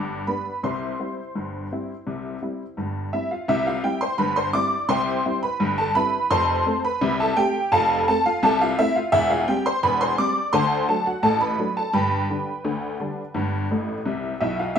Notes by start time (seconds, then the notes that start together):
Already playing: G1 G2 D5 D6
0.27 G3 B3 D4 B4 B5
0.63 C2 C3 C5 C6
0.99 G3 C4 E4
1.35 G1 G2
1.72 G3 C4 E4
2.07 C2 C3
2.42 G3 C4 E4
2.77 G1 G2
3.13 G3 C4 E4 E5
3.31 F4 F5
3.48 C2 C3 E4 E5
3.67 F4 F5
3.84 G3 C4 E4 G4 G5
4.01 C5 C6
4.18 G1 G2 B4 B5
4.36 C5 C6
4.53 G3 C4 E4 D5 D6
4.89 C2 C3 C5 G5 C6
5.25 G3 C4 E4
5.43 B4 B5
5.60 G1 G2
5.78 A4 A5
5.95 G3 C4 E4 B4 B5
6.30 F1 F2 C5 A5 C6
6.66 A3 C4
6.85 B4 B5
7.01 C2 C3
7.20 A4 A5
7.37 A3 C4 G4 G5
7.72 F1 F2 A4 F5 A5
8.08 A3 C4 A4 A5
8.26 F4 F5
8.43 C2 C3 A4 A5
8.61 F4 F5
8.79 A3 C4 E4 E5
8.96 F4 F5
9.12 E1 E2 E4 E5
9.30 F4 F5
9.48 G3 C4 G4 G5
9.66 C5 C6
9.83 E1 E2 B4 B5
10.01 C5 C6
10.18 G3 C4 D5 D6
10.53 D2 D3 C5 A5 C6
10.88 F#3 A3 D4 A4 A5
11.06 F#4 F#5
11.23 A1 A2 A4 A5
11.41 B4 B5
11.59 F#3 A3 D4
11.77 A4 A5
11.93 G1 G2 B4 G5 B5
12.30 D3 G3 D4
12.65 D2 D3
13.00 D3 G3 D4
13.34 G1 G2
13.71 A1 A2
14.05 C2 C3
14.40 B1 B2 E4 E5
14.59 F4 F5
14.76 E5